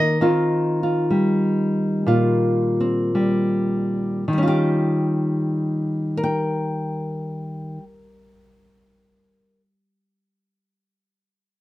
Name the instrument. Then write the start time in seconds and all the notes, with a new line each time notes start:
nylon-string guitar
Already playing: D#3 A#3 A#4 D#5
0.21 D#3 C4 F4
0.83 F4
1.10 G3
2.06 A#2 F4
2.81 C4
3.15 G3
4.28 D#3
4.33 G3
4.38 C#4
4.43 F4
4.48 G4
6.17 A#4
6.24 G5